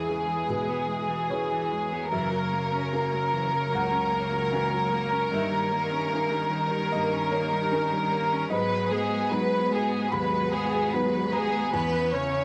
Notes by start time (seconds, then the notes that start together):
Already playing: E2 E3 G#3 E4 G#4 B4 C#5
0.09 C#3
0.28 E3
0.48 B2 G#3 B4
0.69 B3
0.88 G#3
1.08 E3
1.30 C#3 E4 G#4 B4 C#5
1.52 E3
1.72 G#3
1.92 B3
2.12 F#2 C#3 E3 A#3 C#4 A#4 C#5 E5
2.31 F#3
2.53 A#3
2.74 C#4
2.93 A#3 C#4 F#4 A#4
3.14 F#3
3.33 E3
3.52 F#3
3.72 C#2 A#3 F#5
3.92 C#4
4.13 A#3
4.32 F#3
4.52 E3 C#4 F#4 A#4
4.72 F#3
4.92 A#3
5.12 C#4
5.32 G2 D#3 D#4 E5
5.52 G3
5.71 A#3
5.91 C#4
6.11 A#3 C#4 D#4 A#4
6.31 G3
6.51 D#3
6.71 G3
6.92 G2 A#3 D#5
7.13 C#4
7.32 A#3 C#5
7.52 G3
7.72 D#3 C#4 D#4 A#4
7.92 G3
8.12 A#3
8.33 C#4
8.50 G#2 F#3 G#3 B3 F#4 B4 D#5
8.91 G#3 B3 G#4
9.30 F#3 G#3 B3 D#4 F#4 B4
9.70 G#3 B3 G#4
10.12 D#2 F#3 G#3 B4 B5
10.52 G#3 B3 G#4
10.93 F#3 G#3 B3 D#4 F#4 B4
11.33 G#3 B3 G#4 A#5
11.73 E2 E3 B3 C#4 E4 B4 G#5
12.13 C#3 C#4 C#5